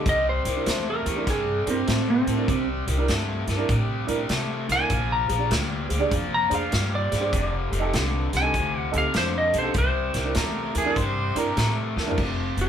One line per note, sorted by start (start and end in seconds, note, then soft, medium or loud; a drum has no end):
0.06 0.42 C2 loud
0.06 0.41 C3 medium
0.06 0.42 G3 medium
0.06 0.27 D#5 medium
0.06 kick loud
0.06 closed hi-hat medium
0.29 0.86 C5 medium
0.44 0.65 C2 medium
0.44 0.65 C3 medium
0.44 0.65 G3 medium
0.44 0.50 E4 soft
0.44 0.51 A#4 soft
0.44 closed hi-hat medium
0.55 0.66 D4 medium
0.55 0.66 E4 medium
0.55 0.67 A#4 medium
0.66 1.03 E2 medium
0.66 1.02 C3 medium
0.66 1.02 A3 medium
0.66 snare loud
0.66 closed hi-hat medium
0.90 1.27 A#4 medium
1.05 1.25 E2 medium
1.05 1.25 C3 medium
1.05 1.25 A3 medium
1.05 1.10 E4 soft
1.05 1.11 G4 soft
1.05 closed hi-hat medium
1.16 1.27 D4 medium
1.16 1.27 E4 medium
1.16 1.27 A#4 medium
1.27 1.63 G2 medium
1.27 1.62 C3 medium
1.27 1.63 G3 medium
1.27 1.68 G#4 medium
1.27 kick loud
1.27 snare soft
1.27 closed hi-hat medium
1.66 1.86 G2 medium
1.66 1.85 C3 medium
1.66 1.86 G3 medium
1.66 1.77 D4 medium
1.66 1.77 E4 medium
1.66 1.78 A#4 medium
1.66 closed hi-hat medium
1.70 2.08 C4 medium
1.88 2.24 A2 medium
1.88 2.23 C3 medium
1.88 2.23 A3 medium
1.88 snare loud
1.88 closed hi-hat medium
2.10 2.68 C4 medium
2.27 2.46 A2 medium
2.27 2.46 C3 medium
2.27 2.46 A3 medium
2.27 2.32 E4 soft
2.27 2.33 A#4 soft
2.27 closed hi-hat medium
2.37 2.48 D4 medium
2.37 2.48 E4 soft
2.37 2.49 A#4 medium
2.48 2.84 C2 medium
2.48 2.83 C3 medium
2.48 2.84 G3 medium
2.48 kick loud
2.48 closed hi-hat medium
2.87 3.07 C2 medium
2.87 3.06 C3 medium
2.87 3.06 G3 medium
2.87 2.92 E4 soft
2.87 2.93 A#4 soft
2.87 closed hi-hat medium
2.97 3.08 D4 medium
2.97 3.08 E4 medium
2.97 3.09 A#4 medium
3.08 3.45 G2 medium
3.08 3.44 C3 medium
3.08 3.44 A3 medium
3.08 snare loud
3.08 closed hi-hat medium
3.47 3.67 G2 medium
3.47 3.67 C3 medium
3.47 3.67 A3 medium
3.47 3.52 E4 medium
3.47 3.53 A#4 soft
3.47 snare soft
3.47 closed hi-hat medium
3.57 3.68 D4 medium
3.57 3.69 E4 medium
3.57 3.69 A#4 medium
3.69 4.05 A2 medium
3.69 4.04 C3 medium
3.69 4.05 G3 medium
3.69 kick loud
3.69 closed hi-hat medium
4.07 4.28 A2 medium
4.07 4.27 C3 medium
4.07 4.28 G3 medium
4.07 4.18 D4 medium
4.07 4.18 E4 medium
4.07 4.19 A#4 medium
4.07 closed hi-hat medium
4.29 4.66 C3 medium
4.29 4.65 C3 medium
4.29 4.65 A3 medium
4.29 snare loud
4.29 closed hi-hat medium
4.68 4.88 C2 medium
4.68 4.88 C3 medium
4.68 4.88 A3 medium
4.68 4.74 E4 soft
4.68 4.74 A#4 soft
4.68 snare soft
4.68 closed hi-hat medium
4.72 5.10 G#5 medium
4.78 4.89 D4 medium
4.78 4.90 E4 medium
4.78 4.90 A#4 medium
4.90 5.27 A#1 medium
4.90 5.25 A#2 medium
4.90 5.26 F3 medium
4.90 kick loud
4.90 closed hi-hat medium
5.12 5.51 A#5 medium
5.27 5.49 A#1 medium
5.27 5.49 A#2 medium
5.27 5.49 F3 medium
5.27 5.34 G#4 soft
5.27 5.34 C5 soft
5.27 closed hi-hat medium
5.38 5.50 D4 medium
5.38 5.50 G#4 medium
5.38 5.50 D5 medium
5.51 5.87 D2 medium
5.51 5.86 A#2 medium
5.51 5.86 G3 medium
5.51 snare loud
5.51 closed hi-hat medium
5.87 6.10 D2 medium
5.87 6.09 A#2 medium
5.87 6.10 G3 medium
5.87 5.94 G#4 soft
5.87 5.95 C5 medium
5.87 closed hi-hat medium
5.99 6.10 D4 medium
5.99 6.11 G#4 medium
5.99 6.11 D5 medium
6.11 6.48 F2 medium
6.11 6.47 A#2 medium
6.11 6.47 F3 medium
6.11 kick loud
6.11 closed hi-hat medium
6.34 6.53 A#5 medium
6.49 6.70 F2 medium
6.49 6.70 A#2 medium
6.49 6.70 F3 medium
6.49 6.60 D4 medium
6.49 6.61 G#4 medium
6.49 6.61 C5 medium
6.49 closed hi-hat medium
6.55 6.92 F5 medium
6.72 7.09 G2 medium
6.72 7.07 A#2 medium
6.72 7.08 G3 medium
6.72 snare loud
6.72 closed hi-hat medium
6.95 7.52 D5 medium
7.10 7.31 G2 medium
7.10 7.30 A#2 medium
7.10 7.31 G3 medium
7.10 7.16 G#4 soft
7.10 7.16 C5 soft
7.10 snare soft
7.10 closed hi-hat medium
7.20 7.31 D4 medium
7.20 7.32 G#4 medium
7.20 7.32 C5 medium
7.33 7.69 F1 loud
7.33 7.68 F2 medium
7.33 7.68 C3 medium
7.33 kick loud
7.33 closed hi-hat medium
7.69 7.92 F1 medium
7.69 7.91 F2 medium
7.69 7.91 C3 medium
7.69 7.76 G4 soft
7.69 7.76 A4 soft
7.69 closed hi-hat medium
7.79 7.92 D#4 medium
7.79 7.92 G4 medium
7.79 7.93 A4 medium
7.93 8.30 C2 medium
7.93 8.29 F2 medium
7.93 8.29 D3 loud
7.93 snare loud
7.93 closed hi-hat medium
8.31 8.52 C2 medium
8.31 8.52 F2 medium
8.31 8.52 D3 medium
8.31 8.37 G4 soft
8.31 8.37 A4 soft
8.31 snare soft
8.31 closed hi-hat medium
8.37 8.79 G#5 medium
8.41 8.53 D#4 medium
8.41 8.53 G4 medium
8.41 8.54 A4 medium
8.54 8.90 D2 medium
8.54 8.89 F2 medium
8.54 8.90 C3 medium
8.54 kick loud
8.54 closed hi-hat medium
8.79 8.94 F#5 medium
8.91 9.13 D2 medium
8.91 9.12 F2 medium
8.91 9.13 C3 medium
8.91 9.03 D#4 medium
8.91 9.03 G4 medium
8.91 9.03 A4 medium
8.91 closed hi-hat medium
8.98 9.16 F5 medium
9.14 9.50 F2 medium
9.14 9.51 F2 medium
9.14 9.50 D3 medium
9.14 9.36 C5 medium
9.14 snare loud
9.14 closed hi-hat medium
9.38 9.56 D#5 medium
9.52 9.74 B1 medium
9.52 9.73 F2 medium
9.52 9.73 D3 medium
9.52 9.58 G4 soft
9.52 9.59 A4 soft
9.52 closed hi-hat medium
9.58 9.74 D#4 medium
9.58 9.76 C5 medium
9.63 9.74 G4 medium
9.63 9.75 A4 medium
9.74 10.11 C2 medium
9.74 10.10 C3 medium
9.74 10.11 G3 medium
9.74 kick loud
9.74 closed hi-hat medium
9.78 10.36 C5 medium
10.12 10.34 C2 medium
10.12 10.34 C3 medium
10.12 10.34 G3 medium
10.12 10.19 E4 soft
10.12 10.20 A#4 soft
10.12 snare soft
10.12 closed hi-hat medium
10.24 10.35 D4 medium
10.24 10.35 E4 medium
10.24 10.36 A#4 medium
10.35 10.72 E2 medium
10.35 10.71 C3 medium
10.35 10.71 A3 medium
10.35 10.76 A#4 medium
10.35 snare loud
10.35 closed hi-hat medium
10.73 10.95 E2 medium
10.73 10.94 C3 medium
10.73 10.95 A3 medium
10.73 10.80 E4 medium
10.73 10.80 A#4 medium
10.73 closed hi-hat medium
10.78 10.99 G#4 medium
10.85 10.96 D4 medium
10.85 10.96 E4 medium
10.85 10.97 A#4 medium
10.96 11.33 G2 medium
10.96 11.32 C3 medium
10.96 11.32 G3 medium
10.96 11.40 C5 medium
10.96 kick loud
10.96 closed hi-hat medium
11.35 11.55 G2 medium
11.35 11.55 C3 medium
11.35 11.55 G3 medium
11.35 11.46 D4 medium
11.35 11.47 E4 medium
11.35 11.47 A#4 medium
11.35 11.70 A#4 medium
11.35 closed hi-hat medium
11.57 11.93 A2 medium
11.57 11.93 C3 medium
11.57 11.93 A3 medium
11.57 snare loud
11.57 closed hi-hat medium
11.95 12.16 E2 medium
11.95 12.16 C3 medium
11.95 12.16 A3 medium
11.95 12.01 E4 soft
11.95 12.02 A#4 medium
11.95 snare medium
12.06 12.18 D4 medium
12.06 12.18 E4 medium
12.06 12.18 A#4 medium
12.11 floor tom medium
12.17 12.54 F1 medium
12.17 12.53 F2 medium
12.17 12.54 C3 medium
12.17 kick medium
12.17 crash medium
12.57 12.69 F1 medium
12.57 12.69 F2 medium
12.57 12.69 C3 medium
12.57 closed hi-hat medium
12.61 12.69 G#4 medium